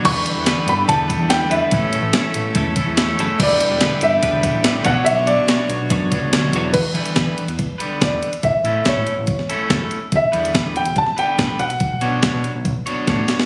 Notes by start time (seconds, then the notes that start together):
0.03 E2 D3 E3 G3 B3 B4 D5 G5 B5 C#6 E6, kick, crash
0.25 muted clean electric guitar stroke, closed hi-hat
0.36 E2
0.45 D3 G3 B3 B4, snare, closed hi-hat
0.66 G2 B5, muted clean electric guitar stroke, closed hi-hat
0.88 E2 D3 G3 B3 B4 A5, kick, closed hi-hat
1.08 G3 B3 B4, muted clean electric guitar stroke, kick, closed hi-hat
1.19 E2
1.29 D3 E3 G3 B3 G5, muted clean electric guitar stroke, snare, closed hi-hat
1.33 B4
1.41 snare
1.49 E2 D3 G3 B3 B4 E5, closed hi-hat
1.71 A1 A2 A3 C#4 E4 A4 C#5 E5 A5, muted clean electric guitar stroke, kick, closed hi-hat
1.93 muted clean electric guitar stroke, closed hi-hat
2.01 A1
2.13 A3 C#4 E4, snare, closed hi-hat
2.17 A4
2.34 A1, muted clean electric guitar stroke, closed hi-hat
2.55 E2 A3 C#4 E4 A4, kick, closed hi-hat
2.75 C#4 E4 A4, kick, closed hi-hat
2.86 E2
2.95 A2 A3 C#4 E4 A4, muted clean electric guitar stroke, snare, closed hi-hat
3.09 snare
3.18 F#1 A3 C#4 E4 A4, closed hi-hat
3.38 E1 D3 E3 G3 B4 G5 D6, muted clean electric guitar stroke, kick, crash
3.42 B3 B4 D5
3.60 muted clean electric guitar stroke, closed hi-hat
3.69 E1
3.81 D3 G3 B3 B4, snare, closed hi-hat
4.01 G1 E5, muted clean electric guitar stroke, closed hi-hat
4.22 E1 D3 G3 B3 B4, kick, closed hi-hat
4.43 G3 B3 B4, kick, closed hi-hat
4.54 A1
4.64 D3 E3 G3 B3 B4, muted clean electric guitar stroke, snare, closed hi-hat
4.84 B1 B2 F#3 B3 D4 F#4 C#5 F#5 C#6, kick, closed hi-hat
5.04 B1 B2 F#3 B3 D4 E5, muted clean electric guitar stroke, closed hi-hat
5.09 F#4 C#5
5.27 D5, muted clean electric guitar stroke, closed hi-hat
5.38 B1
5.48 B3 D4 F#4 C#5, snare, closed hi-hat
5.69 B1, muted clean electric guitar stroke, closed hi-hat
5.90 F#2 B3 D4 F#4 C#5, kick, closed hi-hat
6.10 C#2 B3 D4 F#4 C#5, muted clean electric guitar stroke, kick, closed hi-hat
6.30 D2 B2 F#3 B3 D4, muted clean electric guitar stroke, snare, closed hi-hat
6.34 F#4 C#5
6.52 E2 B3 D4 F#4 C#5, closed hi-hat
6.56 C#5
6.73 E2 B4, kick, closed hi-hat, crash
6.94 D3 E3 G3 B3 B4, closed hi-hat
7.05 closed hi-hat
7.15 D3 G3 B3 B4, kick, snare, closed hi-hat
7.27 E3
7.38 closed hi-hat
7.48 E2, closed hi-hat
7.59 kick, closed hi-hat
7.78 D3 G3 B3 B4, closed hi-hat
8.01 E2 D3 G3 B3 B4 D5, kick, snare, closed hi-hat
8.23 closed hi-hat
8.33 closed hi-hat
8.43 A1 E5, kick, closed hi-hat
8.64 A2 A3 C#4 E4 A4, closed hi-hat
8.85 A3 C#4 E4 A4 C#5, kick, snare, closed hi-hat
8.96 A2
9.07 closed hi-hat
9.17 A1
9.27 kick, closed hi-hat
9.39 snare
9.49 A3 C#4 E4 A4, closed hi-hat
9.70 F#1 A3 C#4 E4 A4, kick, snare, closed hi-hat
9.91 closed hi-hat
10.12 E1 E5, kick, closed hi-hat
10.32 E2 D3 G3 B3 B4, closed hi-hat
10.45 closed hi-hat
10.54 D3 G3 B3 B4, kick, snare, closed hi-hat
10.66 E2
10.76 G5, closed hi-hat
10.85 E1, closed hi-hat
10.96 A5, kick, closed hi-hat
11.06 snare
11.17 D3 G3 B3 B4 G5, closed hi-hat
11.38 A1 D3 G3 B3 B4, kick, snare, closed hi-hat
11.59 B1 F#5, closed hi-hat
11.70 closed hi-hat
11.80 kick, closed hi-hat
12.01 B2 B3 D4 F#4 C#5, closed hi-hat
12.22 B3 D4 F#4 C#5, kick, snare, closed hi-hat
12.34 B2
12.44 closed hi-hat
12.55 B1
12.65 kick, closed hi-hat
12.86 B3 D4 F#4 C#5, closed hi-hat
13.07 A2 B3 D4 F#4 C#5, kick, snare, closed hi-hat
13.28 snare, closed hi-hat
13.40 snare